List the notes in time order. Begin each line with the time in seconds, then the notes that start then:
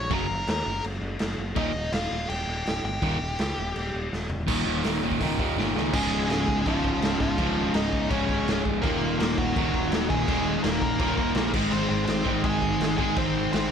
Already playing: C#5 C#6
0.10 F#1 F#2 C#3 F#3 A#4, kick, crash
0.15 A#5
0.30 F#1
0.47 D#2 A#4 A#5, snare, crash
0.66 F#1
0.84 F#1, crash
1.02 F#1
1.19 F#1, snare, crash
1.38 F#1
1.55 D#1 D#2 A#2 D#3 D#4 D#5, kick, crash
1.74 D#1
1.92 D#1 F4 F5, snare, crash
2.11 D#1
2.28 D#1 G4 G5, crash
2.47 D#1
2.66 C#1, snare, crash
2.84 G1 G4 G5
3.02 D#1 D#2 A#2 D#3, kick, crash
3.21 D#1
3.39 C#2, snare, crash
3.58 D#1
3.76 D#1, crash
3.94 D#1
4.13 D#1, snare
4.30 D#1, floor tom
4.47 D#1 D#2 A#2 D#3, kick, crash
4.66 D#1 D#2 A#2 D#3
4.84 D#1 D#2 A#2 D#3, snare, open hi-hat
5.02 D#1 D#2 A#2 D#3
5.12 kick
5.20 C#1 D#2 A#2 D#3, kick, open hi-hat
5.39 D#2 A#2 D#3, kick
5.57 G1 D#2 A#2 D#3, snare
5.75 C#2 D#2 A#2 D#3, snare
5.93 C#1 C#2 G#2 C#3 G#3 G#4, kick, crash
6.11 C#1
6.30 C#1 G#3 G#4, snare, crash
6.48 C#1, kick
6.64 C#1 C#2 G#2 C#3 F4, kick, crash
6.69 F3
6.84 C#1, kick
7.02 C#1, snare, crash
7.20 C#1 F3 F4, kick
7.37 C#1 C#2 G#2 C#3, kick, crash
7.74 C#1 D#4 D#5, snare, crash
7.93 C#1, kick
8.10 C#1 C#2 G#2 C#3 C#4 C#5, kick, crash
8.29 C#1, kick
8.47 C#1, snare, crash
8.65 C#1, kick
8.82 D#1 D#2 A#2 D#3 A#3 A#4, kick, crash
9.01 D#1
9.19 D#1 A#3 A#4, snare, crash
9.38 D#1 F#3 F#4, kick
9.55 D#1 D#2 A#2 D#3, kick, crash
9.74 D#1, kick
9.92 D#1, snare, crash
10.10 D#1 G#3 G#4, kick
10.28 D#1 D#2 A#2 D#3, kick, crash
10.64 D#1 A#3 A#4, snare, crash
10.81 D#1 A#3 A#4, kick
10.99 D#1 D#2 A#2 D#3 A#3 A#4, kick, crash
11.17 D#1, kick
11.35 A#1, snare, crash
11.53 G#1 G#2 D#3 G#3, kick, crash
11.72 G#1 C4 C5, crash
11.90 G#1 C4 C5
12.05 G#1 C4 C5, snare, crash
12.24 G#1 G#2 D#3 G#3, kick
12.44 G#1 G#3 G#4, kick, crash
12.62 G#1, kick
12.80 G#1, snare, crash
12.97 G#1 G#2 D#3 G#3 G#4, kick
13.16 G#1 C4 C5, kick, crash
13.52 G#1 C4 C5, snare, crash